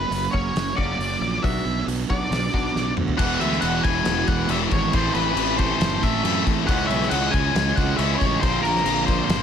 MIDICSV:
0, 0, Header, 1, 8, 480
1, 0, Start_track
1, 0, Tempo, 436999
1, 1576, Time_signature, 4, 2, 24, 8
1, 10355, End_track
2, 0, Start_track
2, 0, Title_t, "Lead electric guitar"
2, 0, Program_c, 0, 29
2, 0, Note_on_c, 0, 71, 93
2, 315, Note_off_c, 0, 71, 0
2, 344, Note_on_c, 0, 73, 85
2, 835, Note_off_c, 0, 73, 0
2, 840, Note_on_c, 0, 74, 90
2, 1566, Note_on_c, 0, 76, 89
2, 1592, Note_off_c, 0, 74, 0
2, 2020, Note_off_c, 0, 76, 0
2, 2304, Note_on_c, 0, 74, 103
2, 3221, Note_off_c, 0, 74, 0
2, 3489, Note_on_c, 0, 78, 101
2, 3737, Note_off_c, 0, 78, 0
2, 3741, Note_on_c, 0, 76, 94
2, 3959, Note_off_c, 0, 76, 0
2, 3964, Note_on_c, 0, 78, 103
2, 4213, Note_on_c, 0, 80, 103
2, 4221, Note_off_c, 0, 78, 0
2, 4698, Note_on_c, 0, 78, 100
2, 4713, Note_off_c, 0, 80, 0
2, 4924, Note_off_c, 0, 78, 0
2, 4950, Note_on_c, 0, 76, 88
2, 5014, Note_off_c, 0, 76, 0
2, 5188, Note_on_c, 0, 73, 89
2, 5429, Note_off_c, 0, 73, 0
2, 5434, Note_on_c, 0, 72, 96
2, 5646, Note_off_c, 0, 72, 0
2, 5650, Note_on_c, 0, 71, 89
2, 6118, Note_off_c, 0, 71, 0
2, 6123, Note_on_c, 0, 72, 90
2, 6623, Note_on_c, 0, 76, 97
2, 6625, Note_off_c, 0, 72, 0
2, 7066, Note_off_c, 0, 76, 0
2, 7324, Note_on_c, 0, 78, 114
2, 7541, Note_off_c, 0, 78, 0
2, 7545, Note_on_c, 0, 76, 94
2, 7796, Note_off_c, 0, 76, 0
2, 7800, Note_on_c, 0, 78, 102
2, 8029, Note_on_c, 0, 80, 109
2, 8054, Note_off_c, 0, 78, 0
2, 8523, Note_on_c, 0, 78, 106
2, 8535, Note_off_c, 0, 80, 0
2, 8750, Note_off_c, 0, 78, 0
2, 8754, Note_on_c, 0, 76, 96
2, 8929, Note_off_c, 0, 76, 0
2, 8942, Note_on_c, 0, 71, 73
2, 8978, Note_off_c, 0, 71, 0
2, 8982, Note_on_c, 0, 73, 96
2, 9228, Note_off_c, 0, 73, 0
2, 9232, Note_on_c, 0, 72, 99
2, 9464, Note_off_c, 0, 72, 0
2, 9468, Note_on_c, 0, 70, 94
2, 9922, Note_off_c, 0, 70, 0
2, 9949, Note_on_c, 0, 72, 92
2, 10355, Note_off_c, 0, 72, 0
2, 10355, End_track
3, 0, Start_track
3, 0, Title_t, "Clean electric guitar"
3, 0, Program_c, 1, 27
3, 364, Note_on_c, 1, 66, 87
3, 367, Note_on_c, 1, 61, 88
3, 372, Note_on_c, 1, 58, 72
3, 382, Note_on_c, 1, 54, 76
3, 596, Note_off_c, 1, 54, 0
3, 601, Note_off_c, 1, 58, 0
3, 607, Note_off_c, 1, 61, 0
3, 608, Note_off_c, 1, 66, 0
3, 845, Note_on_c, 1, 66, 92
3, 851, Note_on_c, 1, 61, 86
3, 855, Note_on_c, 1, 58, 72
3, 858, Note_on_c, 1, 54, 77
3, 1085, Note_off_c, 1, 54, 0
3, 1088, Note_off_c, 1, 58, 0
3, 1089, Note_off_c, 1, 61, 0
3, 1090, Note_off_c, 1, 66, 0
3, 1571, Note_on_c, 1, 54, 80
3, 1578, Note_on_c, 1, 59, 86
3, 1581, Note_on_c, 1, 62, 101
3, 1586, Note_on_c, 1, 66, 99
3, 1809, Note_off_c, 1, 66, 0
3, 1812, Note_off_c, 1, 59, 0
3, 1812, Note_off_c, 1, 62, 0
3, 1815, Note_off_c, 1, 54, 0
3, 2307, Note_on_c, 1, 66, 87
3, 2314, Note_on_c, 1, 62, 80
3, 2321, Note_on_c, 1, 59, 85
3, 2322, Note_on_c, 1, 54, 68
3, 2539, Note_off_c, 1, 54, 0
3, 2542, Note_off_c, 1, 59, 0
3, 2545, Note_off_c, 1, 66, 0
3, 2546, Note_off_c, 1, 62, 0
3, 2786, Note_on_c, 1, 66, 88
3, 2792, Note_on_c, 1, 59, 74
3, 2794, Note_on_c, 1, 62, 96
3, 2797, Note_on_c, 1, 54, 69
3, 3017, Note_off_c, 1, 54, 0
3, 3023, Note_off_c, 1, 59, 0
3, 3024, Note_off_c, 1, 62, 0
3, 3025, Note_off_c, 1, 66, 0
3, 10355, End_track
4, 0, Start_track
4, 0, Title_t, "Distorted electric guitar"
4, 0, Program_c, 2, 30
4, 0, Note_on_c, 2, 54, 82
4, 0, Note_on_c, 2, 58, 78
4, 0, Note_on_c, 2, 61, 78
4, 0, Note_on_c, 2, 66, 91
4, 826, Note_off_c, 2, 54, 0
4, 828, Note_off_c, 2, 66, 0
4, 832, Note_off_c, 2, 61, 0
4, 833, Note_off_c, 2, 58, 0
4, 841, Note_on_c, 2, 66, 75
4, 845, Note_on_c, 2, 61, 80
4, 860, Note_on_c, 2, 58, 70
4, 867, Note_on_c, 2, 54, 71
4, 1074, Note_off_c, 2, 66, 0
4, 1075, Note_off_c, 2, 54, 0
4, 1076, Note_off_c, 2, 61, 0
4, 1083, Note_off_c, 2, 58, 0
4, 1088, Note_on_c, 2, 54, 79
4, 1099, Note_on_c, 2, 58, 85
4, 1108, Note_on_c, 2, 61, 80
4, 1120, Note_on_c, 2, 66, 90
4, 1559, Note_off_c, 2, 54, 0
4, 1565, Note_off_c, 2, 58, 0
4, 1568, Note_on_c, 2, 47, 79
4, 1569, Note_off_c, 2, 61, 0
4, 1575, Note_off_c, 2, 66, 0
4, 1577, Note_on_c, 2, 54, 78
4, 1587, Note_on_c, 2, 59, 89
4, 1595, Note_on_c, 2, 62, 90
4, 1599, Note_on_c, 2, 66, 86
4, 2747, Note_off_c, 2, 66, 0
4, 2759, Note_off_c, 2, 62, 0
4, 2760, Note_on_c, 2, 66, 92
4, 2763, Note_off_c, 2, 47, 0
4, 2765, Note_off_c, 2, 59, 0
4, 2768, Note_off_c, 2, 54, 0
4, 2773, Note_on_c, 2, 62, 88
4, 2778, Note_on_c, 2, 59, 71
4, 2784, Note_on_c, 2, 54, 68
4, 2790, Note_on_c, 2, 47, 68
4, 2991, Note_off_c, 2, 47, 0
4, 2997, Note_off_c, 2, 66, 0
4, 3003, Note_off_c, 2, 54, 0
4, 3004, Note_off_c, 2, 62, 0
4, 3004, Note_on_c, 2, 47, 82
4, 3007, Note_off_c, 2, 59, 0
4, 3017, Note_on_c, 2, 54, 83
4, 3022, Note_on_c, 2, 59, 93
4, 3024, Note_on_c, 2, 62, 86
4, 3034, Note_on_c, 2, 66, 82
4, 3480, Note_off_c, 2, 47, 0
4, 3486, Note_off_c, 2, 54, 0
4, 3489, Note_off_c, 2, 59, 0
4, 3490, Note_off_c, 2, 62, 0
4, 3491, Note_on_c, 2, 52, 90
4, 3495, Note_off_c, 2, 66, 0
4, 3501, Note_on_c, 2, 56, 87
4, 3514, Note_on_c, 2, 59, 93
4, 3519, Note_on_c, 2, 64, 95
4, 5404, Note_on_c, 2, 45, 85
4, 5406, Note_off_c, 2, 52, 0
4, 5407, Note_off_c, 2, 56, 0
4, 5410, Note_on_c, 2, 52, 89
4, 5414, Note_off_c, 2, 59, 0
4, 5421, Note_on_c, 2, 57, 103
4, 5424, Note_on_c, 2, 60, 101
4, 5426, Note_off_c, 2, 64, 0
4, 5430, Note_on_c, 2, 64, 101
4, 7313, Note_off_c, 2, 45, 0
4, 7314, Note_off_c, 2, 52, 0
4, 7319, Note_on_c, 2, 49, 96
4, 7322, Note_off_c, 2, 57, 0
4, 7323, Note_off_c, 2, 60, 0
4, 7327, Note_off_c, 2, 64, 0
4, 7327, Note_on_c, 2, 56, 92
4, 7337, Note_on_c, 2, 61, 104
4, 7347, Note_on_c, 2, 64, 106
4, 9226, Note_off_c, 2, 49, 0
4, 9230, Note_off_c, 2, 56, 0
4, 9233, Note_on_c, 2, 46, 83
4, 9235, Note_off_c, 2, 61, 0
4, 9240, Note_off_c, 2, 64, 0
4, 9242, Note_on_c, 2, 50, 88
4, 9244, Note_on_c, 2, 53, 100
4, 9256, Note_on_c, 2, 58, 90
4, 9260, Note_on_c, 2, 65, 103
4, 10355, Note_off_c, 2, 46, 0
4, 10355, Note_off_c, 2, 50, 0
4, 10355, Note_off_c, 2, 53, 0
4, 10355, Note_off_c, 2, 58, 0
4, 10355, Note_off_c, 2, 65, 0
4, 10355, End_track
5, 0, Start_track
5, 0, Title_t, "Distorted electric guitar"
5, 0, Program_c, 3, 30
5, 3483, Note_on_c, 3, 40, 96
5, 3504, Note_on_c, 3, 47, 96
5, 3524, Note_on_c, 3, 52, 110
5, 4200, Note_off_c, 3, 40, 0
5, 4210, Note_off_c, 3, 47, 0
5, 4210, Note_off_c, 3, 52, 0
5, 4214, Note_on_c, 3, 52, 97
5, 4240, Note_on_c, 3, 47, 89
5, 4256, Note_on_c, 3, 40, 72
5, 4919, Note_off_c, 3, 40, 0
5, 4932, Note_on_c, 3, 40, 89
5, 4937, Note_off_c, 3, 47, 0
5, 4959, Note_on_c, 3, 47, 94
5, 4971, Note_off_c, 3, 52, 0
5, 4975, Note_on_c, 3, 52, 97
5, 5403, Note_off_c, 3, 40, 0
5, 5408, Note_off_c, 3, 47, 0
5, 5412, Note_on_c, 3, 45, 94
5, 5432, Note_off_c, 3, 52, 0
5, 5436, Note_on_c, 3, 52, 106
5, 5452, Note_on_c, 3, 57, 108
5, 6118, Note_off_c, 3, 57, 0
5, 6121, Note_off_c, 3, 45, 0
5, 6131, Note_on_c, 3, 57, 95
5, 6149, Note_off_c, 3, 52, 0
5, 6153, Note_on_c, 3, 52, 87
5, 6169, Note_on_c, 3, 45, 70
5, 6840, Note_off_c, 3, 57, 0
5, 6841, Note_off_c, 3, 45, 0
5, 6851, Note_off_c, 3, 52, 0
5, 6855, Note_on_c, 3, 45, 81
5, 6874, Note_on_c, 3, 52, 97
5, 6892, Note_on_c, 3, 57, 94
5, 7321, Note_off_c, 3, 45, 0
5, 7326, Note_on_c, 3, 49, 104
5, 7331, Note_off_c, 3, 52, 0
5, 7339, Note_off_c, 3, 57, 0
5, 7351, Note_on_c, 3, 56, 106
5, 7368, Note_on_c, 3, 61, 112
5, 8034, Note_off_c, 3, 49, 0
5, 8036, Note_off_c, 3, 61, 0
5, 8047, Note_off_c, 3, 56, 0
5, 8049, Note_on_c, 3, 61, 92
5, 8070, Note_on_c, 3, 56, 81
5, 8094, Note_on_c, 3, 49, 77
5, 8753, Note_off_c, 3, 49, 0
5, 8754, Note_off_c, 3, 61, 0
5, 8765, Note_off_c, 3, 56, 0
5, 8766, Note_on_c, 3, 49, 91
5, 8788, Note_on_c, 3, 56, 92
5, 8803, Note_on_c, 3, 61, 89
5, 9232, Note_off_c, 3, 49, 0
5, 9243, Note_off_c, 3, 56, 0
5, 9245, Note_on_c, 3, 46, 97
5, 9251, Note_off_c, 3, 61, 0
5, 9267, Note_on_c, 3, 53, 106
5, 9287, Note_on_c, 3, 58, 108
5, 9941, Note_off_c, 3, 58, 0
5, 9950, Note_off_c, 3, 46, 0
5, 9954, Note_on_c, 3, 58, 95
5, 9961, Note_off_c, 3, 53, 0
5, 9974, Note_on_c, 3, 53, 85
5, 9994, Note_on_c, 3, 46, 70
5, 10355, Note_off_c, 3, 46, 0
5, 10355, Note_off_c, 3, 53, 0
5, 10355, Note_off_c, 3, 58, 0
5, 10355, End_track
6, 0, Start_track
6, 0, Title_t, "Fingered electric bass"
6, 0, Program_c, 4, 33
6, 111, Note_on_c, 4, 30, 82
6, 295, Note_off_c, 4, 30, 0
6, 371, Note_on_c, 4, 30, 84
6, 547, Note_off_c, 4, 30, 0
6, 605, Note_on_c, 4, 30, 89
6, 785, Note_off_c, 4, 30, 0
6, 853, Note_on_c, 4, 30, 84
6, 1030, Note_off_c, 4, 30, 0
6, 1081, Note_on_c, 4, 30, 91
6, 1263, Note_off_c, 4, 30, 0
6, 1326, Note_on_c, 4, 34, 92
6, 1507, Note_off_c, 4, 34, 0
6, 1580, Note_on_c, 4, 35, 89
6, 1756, Note_off_c, 4, 35, 0
6, 1810, Note_on_c, 4, 35, 88
6, 1990, Note_off_c, 4, 35, 0
6, 2051, Note_on_c, 4, 35, 86
6, 2231, Note_off_c, 4, 35, 0
6, 2305, Note_on_c, 4, 35, 88
6, 2480, Note_off_c, 4, 35, 0
6, 2532, Note_on_c, 4, 35, 99
6, 2712, Note_off_c, 4, 35, 0
6, 2788, Note_on_c, 4, 35, 94
6, 2963, Note_off_c, 4, 35, 0
6, 3023, Note_on_c, 4, 35, 93
6, 3199, Note_off_c, 4, 35, 0
6, 3263, Note_on_c, 4, 38, 87
6, 3440, Note_off_c, 4, 38, 0
6, 3504, Note_on_c, 4, 28, 96
6, 3690, Note_off_c, 4, 28, 0
6, 3739, Note_on_c, 4, 38, 92
6, 3927, Note_off_c, 4, 38, 0
6, 3982, Note_on_c, 4, 28, 97
6, 4169, Note_off_c, 4, 28, 0
6, 4223, Note_on_c, 4, 28, 85
6, 4409, Note_off_c, 4, 28, 0
6, 4458, Note_on_c, 4, 28, 106
6, 4646, Note_off_c, 4, 28, 0
6, 4701, Note_on_c, 4, 28, 100
6, 4888, Note_off_c, 4, 28, 0
6, 4932, Note_on_c, 4, 28, 102
6, 5122, Note_off_c, 4, 28, 0
6, 5178, Note_on_c, 4, 32, 93
6, 5365, Note_off_c, 4, 32, 0
6, 5424, Note_on_c, 4, 33, 97
6, 5609, Note_off_c, 4, 33, 0
6, 5651, Note_on_c, 4, 33, 100
6, 5841, Note_off_c, 4, 33, 0
6, 5889, Note_on_c, 4, 33, 96
6, 6265, Note_off_c, 4, 33, 0
6, 6370, Note_on_c, 4, 30, 103
6, 6560, Note_off_c, 4, 30, 0
6, 6616, Note_on_c, 4, 33, 98
6, 6803, Note_off_c, 4, 33, 0
6, 6854, Note_on_c, 4, 42, 108
6, 7041, Note_off_c, 4, 42, 0
6, 7102, Note_on_c, 4, 33, 99
6, 7285, Note_off_c, 4, 33, 0
6, 7341, Note_on_c, 4, 37, 102
6, 7524, Note_off_c, 4, 37, 0
6, 7568, Note_on_c, 4, 35, 95
6, 7756, Note_off_c, 4, 35, 0
6, 7811, Note_on_c, 4, 37, 104
6, 7998, Note_off_c, 4, 37, 0
6, 8059, Note_on_c, 4, 37, 91
6, 8243, Note_off_c, 4, 37, 0
6, 8292, Note_on_c, 4, 37, 98
6, 8477, Note_off_c, 4, 37, 0
6, 8536, Note_on_c, 4, 37, 101
6, 8720, Note_off_c, 4, 37, 0
6, 8767, Note_on_c, 4, 37, 96
6, 8954, Note_off_c, 4, 37, 0
6, 9022, Note_on_c, 4, 33, 93
6, 9203, Note_off_c, 4, 33, 0
6, 9254, Note_on_c, 4, 34, 104
6, 9437, Note_off_c, 4, 34, 0
6, 9484, Note_on_c, 4, 34, 87
6, 9671, Note_off_c, 4, 34, 0
6, 9722, Note_on_c, 4, 34, 96
6, 10094, Note_off_c, 4, 34, 0
6, 10200, Note_on_c, 4, 31, 102
6, 10355, Note_off_c, 4, 31, 0
6, 10355, End_track
7, 0, Start_track
7, 0, Title_t, "Muted clean electric guitar strokes"
7, 125, Note_on_c, 9, 29, 40
7, 235, Note_off_c, 9, 29, 0
7, 609, Note_on_c, 9, 29, 43
7, 719, Note_off_c, 9, 29, 0
7, 1099, Note_on_c, 9, 29, 46
7, 1208, Note_off_c, 9, 29, 0
7, 1333, Note_on_c, 9, 29, 50
7, 1443, Note_off_c, 9, 29, 0
7, 1822, Note_on_c, 9, 29, 52
7, 1932, Note_off_c, 9, 29, 0
7, 2062, Note_on_c, 9, 29, 48
7, 2172, Note_off_c, 9, 29, 0
7, 2552, Note_on_c, 9, 29, 40
7, 2662, Note_off_c, 9, 29, 0
7, 3030, Note_on_c, 9, 29, 45
7, 3140, Note_off_c, 9, 29, 0
7, 3265, Note_on_c, 9, 29, 57
7, 3374, Note_off_c, 9, 29, 0
7, 10355, End_track
8, 0, Start_track
8, 0, Title_t, "Drums"
8, 131, Note_on_c, 9, 46, 55
8, 241, Note_off_c, 9, 46, 0
8, 374, Note_on_c, 9, 36, 85
8, 484, Note_off_c, 9, 36, 0
8, 616, Note_on_c, 9, 46, 50
8, 625, Note_on_c, 9, 38, 102
8, 726, Note_off_c, 9, 46, 0
8, 734, Note_off_c, 9, 38, 0
8, 858, Note_on_c, 9, 36, 83
8, 968, Note_off_c, 9, 36, 0
8, 1105, Note_on_c, 9, 46, 47
8, 1215, Note_off_c, 9, 46, 0
8, 1583, Note_on_c, 9, 36, 103
8, 1585, Note_on_c, 9, 46, 52
8, 1693, Note_off_c, 9, 36, 0
8, 1695, Note_off_c, 9, 46, 0
8, 2068, Note_on_c, 9, 46, 61
8, 2178, Note_off_c, 9, 46, 0
8, 2308, Note_on_c, 9, 36, 87
8, 2417, Note_off_c, 9, 36, 0
8, 2549, Note_on_c, 9, 46, 53
8, 2558, Note_on_c, 9, 38, 103
8, 2659, Note_off_c, 9, 46, 0
8, 2668, Note_off_c, 9, 38, 0
8, 2788, Note_on_c, 9, 36, 86
8, 2897, Note_off_c, 9, 36, 0
8, 3032, Note_on_c, 9, 38, 59
8, 3142, Note_off_c, 9, 38, 0
8, 3262, Note_on_c, 9, 45, 83
8, 3372, Note_off_c, 9, 45, 0
8, 3382, Note_on_c, 9, 43, 85
8, 3492, Note_off_c, 9, 43, 0
8, 3504, Note_on_c, 9, 49, 115
8, 3504, Note_on_c, 9, 57, 93
8, 3507, Note_on_c, 9, 36, 106
8, 3614, Note_off_c, 9, 49, 0
8, 3614, Note_off_c, 9, 57, 0
8, 3617, Note_off_c, 9, 36, 0
8, 3745, Note_on_c, 9, 57, 67
8, 3855, Note_off_c, 9, 57, 0
8, 3868, Note_on_c, 9, 38, 32
8, 3973, Note_on_c, 9, 57, 94
8, 3978, Note_off_c, 9, 38, 0
8, 4083, Note_off_c, 9, 57, 0
8, 4222, Note_on_c, 9, 57, 65
8, 4224, Note_on_c, 9, 36, 88
8, 4332, Note_off_c, 9, 57, 0
8, 4333, Note_off_c, 9, 36, 0
8, 4451, Note_on_c, 9, 57, 90
8, 4460, Note_on_c, 9, 38, 112
8, 4561, Note_off_c, 9, 57, 0
8, 4569, Note_off_c, 9, 38, 0
8, 4695, Note_on_c, 9, 57, 66
8, 4701, Note_on_c, 9, 36, 97
8, 4805, Note_off_c, 9, 57, 0
8, 4811, Note_off_c, 9, 36, 0
8, 4929, Note_on_c, 9, 57, 89
8, 5039, Note_off_c, 9, 57, 0
8, 5175, Note_on_c, 9, 57, 63
8, 5182, Note_on_c, 9, 36, 100
8, 5285, Note_off_c, 9, 57, 0
8, 5291, Note_off_c, 9, 36, 0
8, 5416, Note_on_c, 9, 57, 81
8, 5422, Note_on_c, 9, 36, 118
8, 5526, Note_off_c, 9, 57, 0
8, 5532, Note_off_c, 9, 36, 0
8, 5652, Note_on_c, 9, 57, 72
8, 5762, Note_off_c, 9, 57, 0
8, 5896, Note_on_c, 9, 57, 102
8, 6006, Note_off_c, 9, 57, 0
8, 6136, Note_on_c, 9, 57, 74
8, 6142, Note_on_c, 9, 36, 91
8, 6245, Note_off_c, 9, 57, 0
8, 6251, Note_off_c, 9, 36, 0
8, 6380, Note_on_c, 9, 57, 95
8, 6389, Note_on_c, 9, 38, 114
8, 6490, Note_off_c, 9, 57, 0
8, 6498, Note_off_c, 9, 38, 0
8, 6623, Note_on_c, 9, 36, 94
8, 6625, Note_on_c, 9, 57, 73
8, 6733, Note_off_c, 9, 36, 0
8, 6735, Note_off_c, 9, 57, 0
8, 6862, Note_on_c, 9, 57, 94
8, 6972, Note_off_c, 9, 57, 0
8, 7103, Note_on_c, 9, 57, 75
8, 7104, Note_on_c, 9, 36, 88
8, 7213, Note_off_c, 9, 57, 0
8, 7214, Note_off_c, 9, 36, 0
8, 7342, Note_on_c, 9, 57, 94
8, 7343, Note_on_c, 9, 36, 118
8, 7452, Note_off_c, 9, 57, 0
8, 7453, Note_off_c, 9, 36, 0
8, 7583, Note_on_c, 9, 57, 65
8, 7693, Note_off_c, 9, 57, 0
8, 7710, Note_on_c, 9, 38, 35
8, 7811, Note_on_c, 9, 57, 108
8, 7820, Note_off_c, 9, 38, 0
8, 7921, Note_off_c, 9, 57, 0
8, 8056, Note_on_c, 9, 57, 66
8, 8059, Note_on_c, 9, 36, 92
8, 8166, Note_off_c, 9, 57, 0
8, 8169, Note_off_c, 9, 36, 0
8, 8298, Note_on_c, 9, 57, 86
8, 8307, Note_on_c, 9, 38, 116
8, 8408, Note_off_c, 9, 57, 0
8, 8416, Note_off_c, 9, 38, 0
8, 8539, Note_on_c, 9, 36, 94
8, 8539, Note_on_c, 9, 57, 72
8, 8649, Note_off_c, 9, 36, 0
8, 8649, Note_off_c, 9, 57, 0
8, 8772, Note_on_c, 9, 57, 92
8, 8882, Note_off_c, 9, 57, 0
8, 9021, Note_on_c, 9, 36, 92
8, 9025, Note_on_c, 9, 57, 67
8, 9130, Note_off_c, 9, 36, 0
8, 9135, Note_off_c, 9, 57, 0
8, 9258, Note_on_c, 9, 57, 83
8, 9260, Note_on_c, 9, 36, 113
8, 9368, Note_off_c, 9, 57, 0
8, 9370, Note_off_c, 9, 36, 0
8, 9499, Note_on_c, 9, 57, 64
8, 9609, Note_off_c, 9, 57, 0
8, 9626, Note_on_c, 9, 38, 34
8, 9728, Note_on_c, 9, 57, 101
8, 9736, Note_off_c, 9, 38, 0
8, 9837, Note_off_c, 9, 57, 0
8, 9973, Note_on_c, 9, 57, 71
8, 9976, Note_on_c, 9, 36, 86
8, 10082, Note_off_c, 9, 57, 0
8, 10086, Note_off_c, 9, 36, 0
8, 10209, Note_on_c, 9, 57, 99
8, 10218, Note_on_c, 9, 38, 118
8, 10319, Note_off_c, 9, 57, 0
8, 10328, Note_off_c, 9, 38, 0
8, 10355, End_track
0, 0, End_of_file